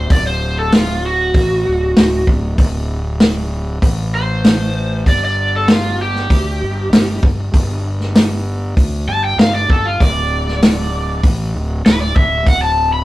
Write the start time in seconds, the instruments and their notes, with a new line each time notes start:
0.10 fingered electric bass D1, electric slide guitar D5, kick, open hi-hat
0.27 electric slide guitar C5
0.59 electric slide guitar A4
0.72 electric slide guitar F4, snare, open hi-hat
1.06 electric slide guitar F#4
1.34 fingered electric bass A1, kick, open hi-hat
1.66 fingered electric bass D1
1.96 fingered electric bass D1, snare, open hi-hat
2.27 fingered electric bass D1, kick
2.58 fingered electric bass D1, kick, open hi-hat
3.20 snare, open hi-hat
3.82 fingered electric bass A1, kick, open hi-hat
4.15 electric slide guitar C5
4.44 snare, open hi-hat
5.06 fingered electric bass G1, electric slide guitar D5, kick, open hi-hat
5.25 electric slide guitar D5
5.56 electric slide guitar A4
5.68 electric slide guitar F4, snare, open hi-hat
6.02 electric slide guitar G4
6.15 snare
6.30 fingered electric bass D2, kick, open hi-hat
6.62 fingered electric bass G1
6.92 fingered electric bass G1, snare, open hi-hat
7.23 fingered electric bass G1, kick
7.54 fingered electric bass G1, kick, open hi-hat
8.00 snare
8.15 snare, open hi-hat
8.77 fingered electric bass D2, kick, open hi-hat
9.07 fingered electric bass G1, electric slide guitar A5
9.24 electric slide guitar G5
9.38 fingered electric bass G1, electric slide guitar F5, snare, open hi-hat
9.55 electric slide guitar D5
9.70 fingered electric bass G1, electric slide guitar A4, kick
9.86 electric slide guitar F4
10.00 fingered electric bass D1, electric slide guitar D5, kick, open hi-hat
10.48 snare
10.62 snare, open hi-hat
11.23 fingered electric bass A1, kick, open hi-hat
11.54 fingered electric bass D1
11.85 fingered electric bass D1, electric slide guitar B4, snare, open hi-hat
12.01 electric slide guitar D5
12.16 fingered electric bass D1, electric slide guitar E5, kick
12.46 fingered electric bass D1, electric slide guitar F#5, kick, open hi-hat
12.62 electric slide guitar A5
12.93 electric slide guitar B5